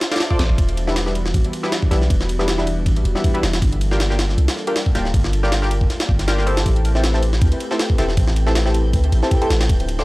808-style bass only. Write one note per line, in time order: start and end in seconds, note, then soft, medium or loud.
0.39 0.56 A1 loud
0.58 1.33 E1 loud
1.34 1.43 A1 medium
1.91 2.08 B1 medium
2.10 2.87 E1 loud
2.86 3.03 A1 loud
3.05 3.14 E1 loud
3.43 3.60 E1 loud
3.62 4.37 G1 loud
4.38 4.47 C2 medium
4.95 5.12 D1 medium
5.14 5.89 G1 loud
6.09 6.64 G1 loud
6.66 7.40 A1 loud
7.42 7.51 D2 medium
7.98 8.16 E1 medium
8.17 8.95 A1 loud
8.93 9.11 D2 loud
9.12 9.22 A1 loud
9.50 9.68 A1 loud
9.69 10.04 D1 loud